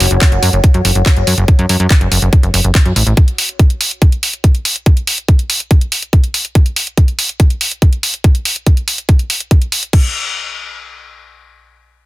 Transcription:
Already playing: F#4 C#5 F#5
0.00 F#1, open hi-hat
0.11 F#1, closed hi-hat
0.21 kick, clap, closed hi-hat
0.32 F#1, closed hi-hat
0.43 F#2, open hi-hat
0.53 F#1, closed hi-hat
0.64 kick, closed hi-hat
0.74 F#2, closed hi-hat
0.85 F#1, open hi-hat
0.95 F#1, closed hi-hat
1.06 kick, clap, closed hi-hat
1.17 F#1, closed hi-hat
1.27 F#2, open hi-hat
1.38 F#1, closed hi-hat
1.48 kick, closed hi-hat
1.59 F#2, closed hi-hat
1.69 F#2, open hi-hat
1.80 F#2, closed hi-hat
1.90 kick, clap, closed hi-hat
2.01 F#1, closed hi-hat
2.12 F#1, open hi-hat
2.22 F#1, closed hi-hat
2.33 kick, closed hi-hat
2.43 F#1, closed hi-hat
2.54 F#1, open hi-hat
2.64 F#1, closed hi-hat
2.75 kick, clap, closed hi-hat
2.86 F#2, closed hi-hat
2.96 A1, open hi-hat
3.07 A1, closed hi-hat
3.17 kick, closed hi-hat
3.28 closed hi-hat
3.38 open hi-hat
3.49 closed hi-hat
3.59 kick, closed hi-hat
3.70 closed hi-hat
3.81 open hi-hat
3.91 closed hi-hat
4.02 kick, closed hi-hat
4.12 closed hi-hat
4.23 open hi-hat
4.33 closed hi-hat
4.44 kick, closed hi-hat
4.55 closed hi-hat
4.65 open hi-hat
4.76 closed hi-hat
4.86 kick, closed hi-hat
4.97 closed hi-hat
5.07 open hi-hat
5.18 closed hi-hat
5.28 kick, closed hi-hat
5.39 closed hi-hat
5.50 open hi-hat
5.60 closed hi-hat
5.71 kick, closed hi-hat
5.81 closed hi-hat
5.92 open hi-hat
6.02 closed hi-hat
6.13 kick, closed hi-hat
6.24 closed hi-hat
6.34 open hi-hat
6.45 closed hi-hat
6.55 kick, closed hi-hat
6.66 closed hi-hat
6.76 open hi-hat
6.87 closed hi-hat
6.97 kick, closed hi-hat
7.08 closed hi-hat
7.19 open hi-hat
7.29 closed hi-hat
7.40 kick, closed hi-hat
7.50 closed hi-hat
7.61 open hi-hat
7.71 closed hi-hat
7.82 kick, closed hi-hat
7.93 closed hi-hat
8.03 open hi-hat
8.14 closed hi-hat
8.24 kick, closed hi-hat
8.35 closed hi-hat
8.45 open hi-hat
8.56 closed hi-hat
8.67 kick, closed hi-hat
8.77 closed hi-hat
8.88 open hi-hat
8.98 closed hi-hat
9.09 kick, closed hi-hat
9.19 closed hi-hat
9.30 open hi-hat
9.40 closed hi-hat
9.51 kick, closed hi-hat
9.62 closed hi-hat
9.72 open hi-hat
9.83 closed hi-hat
9.93 kick, crash

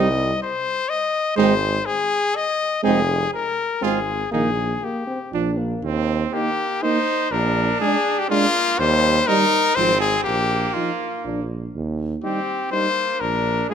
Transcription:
Already playing: C2 D#5
0.43 C5
0.89 D#5
1.36 G#1 G#3 C4 D#4 C5
1.86 G#4
2.36 D#5
2.83 F1 G#3 C4 D#4 G#4
3.34 A#4
3.81 G#1 G#3 C4 F4 G#4
4.32 A#1 D#3 A#3 D#4 G#4
4.81 A#3 G4
5.07 C4
5.33 A#1 F3 D4
5.58 A#3
5.83 D#2 C4
6.33 A#3 D#4 G4
6.83 A#3 D#4 C5
7.31 A#1 D4 A#4
7.80 G#3 D4 G#4
8.19 G4
8.29 G#3 A#3 D4 F4
8.79 D#2 G3 C5
9.27 G3 D#4 A#4
9.75 G#1 F3 C4 C5
10.00 G#4
10.24 A#1 A#3 G4
10.74 F3 D#4 F4
11.24 A#1 F3 D4
11.75 D#2
12.24 G3 C4 D#4 G4
12.71 G3 A#3 D#4 C5
13.20 A#1 D4 A#4
13.69 G#3 D4 F4 G#4

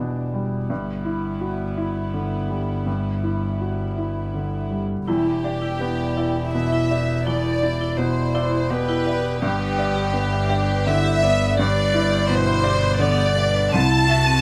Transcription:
Already playing: E1 E2 G3 D4 E4
0.00 B2
0.34 G3
0.70 G1 G2 B3 E4
1.05 E4
1.41 F#4
1.78 E4
2.14 D3
2.50 G3
2.87 G2
3.23 E4
3.61 F#4
3.98 E4
4.34 D3
4.71 G3
5.07 E1 E2 E4 G4
5.26 G4
5.44 D4 G4 D5
5.62 E4
5.80 B3 E4 G4
5.99 D5
6.17 E4 D5
6.36 G4
6.54 B2 E5
6.73 E4
6.91 G4 D5
7.09 G4
7.26 E2 B3 E4 D5
7.45 G4
7.63 D4 E4 G4
7.81 E4
7.97 B2 E4 G4 C5
8.16 D5
8.34 E4 D5
8.53 G4
8.71 B2 G4 B4
8.89 E4
9.06 G4 D5
9.24 G4
9.41 G1 G2 B3 G4
9.59 B4
9.77 B4 D5
9.95 G4
10.13 B3 D4 B4
10.31 E5
10.49 G4 D5
10.68 B4
10.87 D3 E4 E5
11.04 G4
11.22 B3 B4 D5
11.40 B4
11.57 G2 D4 G4 D5
11.76 B4
11.93 E4 B4
12.11 G4
12.28 B2 E4 B4 C5
12.47 E5
12.63 D4 G4 D5
12.82 B4
12.99 D3 B3 D5
13.18 G4
13.36 D4 B4 D5
13.55 B4
13.73 C2 C4 E4 A5
13.91 E4
14.08 E4 F#4 E5
14.27 C4

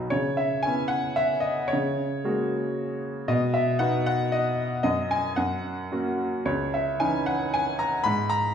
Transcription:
Already playing: B1 B2 F#3 D#4 F#4 B4
0.10 C#3 C#5
0.37 E5
0.63 B3 C#4 E4 G#5
0.88 F#5
1.16 E5
1.40 D#5
1.68 C#5
1.73 C#3
2.24 G#3 A#3 F#4
3.28 B2 D#5
3.54 E5
3.79 B3 D#4 F#4 F#5
4.06 F#5
4.32 D#5
4.83 F#2 D#5
5.11 G#5
5.36 F#2 F#5
5.92 A#3 C#4 F#4
6.45 C#2 C#5
6.74 E5
7.00 E3 C#4 D#4 G#5
7.26 F#5
7.54 G#5
7.79 A#5
8.04 G#2 B5
8.30 A#5

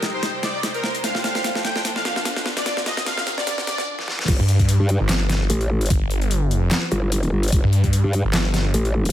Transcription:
Already playing: C3 G3 D#4 G4 C5 G5, riser
0.02 snare, closed hi-hat
0.13 C5
0.23 snare, closed hi-hat
0.43 D5, snare, closed hi-hat
0.63 snare, closed hi-hat
0.74 A#4, closed hi-hat
0.84 snare
0.95 closed hi-hat
1.04 F2 F3 D4 A4 F5, snare, closed hi-hat
1.15 snare
1.23 A4 F5, snare, closed hi-hat
1.35 snare, closed hi-hat
1.44 snare, closed hi-hat
1.55 snare
1.65 G5, snare, closed hi-hat
1.76 F5, snare
1.85 snare, closed hi-hat
1.96 F5, snare
2.05 snare, closed hi-hat
2.16 snare
2.25 snare, closed hi-hat
2.36 snare, closed hi-hat
2.46 snare
2.57 D5, snare, closed hi-hat
2.66 A#2 A#4 F5, snare, closed hi-hat
2.77 snare
2.84 F4 D#5, snare, closed hi-hat
2.97 snare, closed hi-hat
3.06 A#4 F5, snare, closed hi-hat
3.18 snare
3.27 snare, closed hi-hat
3.38 D5, snare
3.47 snare, closed hi-hat
3.58 snare
3.67 D5, snare, closed hi-hat
3.78 snare
3.99 snare
4.08 snare
4.19 snare
4.28 G1, kick, closed hi-hat, crash
4.39 G2
4.48 closed hi-hat
4.59 G2, kick, closed hi-hat
4.69 closed hi-hat
4.80 G2
4.89 closed hi-hat
5.00 G1
5.09 G1, snare, clap, closed hi-hat
5.29 snare, closed hi-hat
5.50 A1, closed hi-hat
5.61 closed hi-hat
5.81 closed hi-hat
5.86 closed hi-hat
5.90 G1, kick, closed hi-hat
6.11 closed hi-hat
6.22 closed hi-hat
6.31 closed hi-hat
6.46 F#1
6.51 closed hi-hat
6.71 snare, clap, closed hi-hat
6.92 G1, closed hi-hat
7.12 closed hi-hat
7.23 closed hi-hat
7.32 G1
7.43 closed hi-hat
7.48 closed hi-hat
7.52 G1, kick, closed hi-hat
7.64 G2
7.73 closed hi-hat
7.84 G2, kick, closed hi-hat
7.93 closed hi-hat
8.04 G2
8.13 closed hi-hat
8.24 G1
8.34 G1, snare, clap, closed hi-hat
8.54 snare, closed hi-hat
8.74 A1, closed hi-hat
8.85 closed hi-hat
9.05 closed hi-hat

